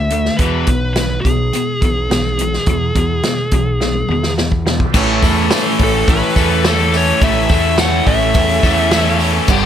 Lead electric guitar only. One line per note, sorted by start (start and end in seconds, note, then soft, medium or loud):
0.00 0.41 E5 loud
0.37 0.92 B4 medium
0.93 1.21 B4 medium
1.21 4.32 G#4 medium
5.83 6.10 A4 medium
6.10 6.67 B4 medium
6.67 6.95 A4 medium
6.97 7.24 C#5 medium
7.24 7.51 E5 loud
7.52 7.80 E5 loud
7.79 8.08 F#5 loud
8.07 9.16 E5 loud